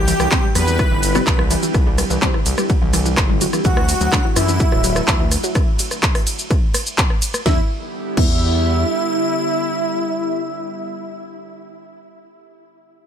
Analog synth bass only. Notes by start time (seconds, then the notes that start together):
Already playing: C2
0.20 C2
0.55 E2
0.91 G1
1.27 C2
1.74 C2
2.10 C2
2.46 C2
2.82 C2
3.17 G1
3.65 D2
4.01 D2
4.36 F#2
4.72 D1
5.08 D2
7.46 E2
8.17 E2